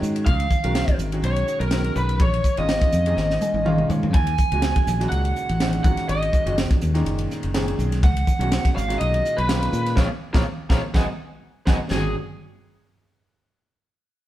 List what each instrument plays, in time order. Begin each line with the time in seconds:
Already playing: grand piano D#3 G#3 C#4 F#4 C#5
0.02 fingered electric bass G#2, hi-hat pedal
0.16 ride
0.26 fingered electric bass C#2, lead electric guitar F5, kick, ride
0.40 ride
0.51 kick, hi-hat pedal
0.64 fingered electric bass B1, grand piano D#3 G#3 C#4 F#4 A#4, ride
0.75 snare, ride
0.88 kick, ride
0.99 fingered electric bass G#1, hi-hat pedal
1.12 grand piano D#3 G#3 C#4 F#4 G#4, ride
1.22 fingered electric bass B1, lead electric guitar C#5, ride
1.36 ride
1.48 hi-hat pedal
1.60 fingered electric bass B1, lead electric guitar A#4, ride
1.71 grand piano D#3 G#3 C#4 F#4 A#4, snare, ride
1.84 ride
1.95 fingered electric bass B1, lead electric guitar B4, hi-hat pedal
2.09 ride
2.20 fingered electric bass A#1, lead electric guitar C#5, kick, ride
2.34 ride
2.44 kick, hi-hat pedal
2.57 fingered electric bass G#1, grand piano A#2 D#3 G#3 C#4 F4, lead electric guitar D#5, ride
2.69 snare, ride
2.81 muted fingered electric bass stroke, kick, snare, ride
2.92 fingered electric bass F2, hi-hat pedal
3.06 grand piano A#2 D#3 G#3 C#4 G#4, ride
3.17 fingered electric bass G#1, snare
3.30 snare
3.41 grand piano G#5, hi-hat pedal, high tom
3.54 fingered electric bass G#1, high tom
3.65 grand piano A#2 D#3 G#3 C#4 F4 F5, mid tom
3.78 mid tom
3.89 fingered electric bass G#2, grand piano C#5, floor tom, hi-hat pedal
4.03 floor tom
4.14 fingered electric bass D#2, lead electric guitar G#5, kick, ride
4.27 ride
4.38 kick, hi-hat pedal
4.52 fingered electric bass C#2, grand piano A#2 D#3 G#3 C#4 F#4, ride
4.62 snare, ride
4.76 muted fingered electric bass stroke, kick, ride
4.87 fingered electric bass A#1, snare, hi-hat pedal
4.99 grand piano A#2 D#3 G#3 C#4 F#4, snare, ride
5.09 fingered electric bass C#2, lead electric guitar F#5, ride
5.25 ride
5.36 hi-hat pedal
5.49 fingered electric bass A1, ride
5.60 grand piano A#2 D#3 G#3 C#4 D#4, snare, ride
5.73 ride
5.84 fingered electric bass G#1, grand piano A#2 D#3 G#3 C#4 F#4, lead electric guitar F#5, kick, hi-hat pedal
5.97 snare, ride
6.09 fingered electric bass G#1, lead electric guitar D#5, ride
6.22 ride
6.33 kick, hi-hat pedal
6.46 fingered electric bass F#1, grand piano A#2 D#3 G#3 C#4 F#4, ride
6.58 snare, ride
6.71 kick, snare, ride
6.81 fingered electric bass D#2, hi-hat pedal
6.94 grand piano A#2 D#3 G#3 C#4 D#4, snare, ride
7.05 fingered electric bass F#1, ride
7.19 ride
7.31 snare, hi-hat pedal
7.43 fingered electric bass F#1, ride
7.54 grand piano A#2 D#3 G#3 C#4 G#4, snare, ride
7.68 ride
7.79 fingered electric bass B1, hi-hat pedal
7.92 snare, ride
8.03 fingered electric bass C#2, lead electric guitar F#5, kick, ride
8.17 ride
8.27 kick, hi-hat pedal
8.39 fingered electric bass B1, grand piano A#2 D#3 G#3 C#4 F#4, ride
8.52 snare, ride
8.65 muted fingered electric bass stroke, kick, snare, ride
8.76 fingered electric bass G#1, lead electric guitar F5, snare, hi-hat pedal
8.88 grand piano A#2 D#3 G#3 C#4 F#4, snare, ride
8.99 fingered electric bass B1, lead electric guitar D#5, ride
9.14 ride
9.25 hi-hat pedal
9.37 fingered electric bass B1, lead electric guitar B4, ride
9.48 grand piano A#2 D#3 G#3 C#4 F4, snare, ride
9.63 ride
9.73 fingered electric bass A#2, hi-hat pedal
9.86 snare, ride
9.95 fingered electric bass A#1, grand piano F3 G#3 A#3, lead electric guitar A#4 C#5 F5, kick, snare
10.34 fingered electric bass A#1, grand piano F3 G#3 A#3, lead electric guitar A#4 C#5 F5, kick, snare
10.69 fingered electric bass A#1, grand piano F3 G#3 A#3, lead electric guitar A#4 C#5 F5, kick, snare
10.94 fingered electric bass G#1, grand piano F#3 G#3 B3, lead electric guitar D#5 F#5 G#5, kick, snare
11.65 fingered electric bass G#1, grand piano F#3 G#3 B3, lead electric guitar D#5 F#5 G#5, kick, snare
11.91 fingered electric bass G#1, grand piano A#2 D#3 G#3 C#4 F#4, lead electric guitar G#4, snare, floor tom, crash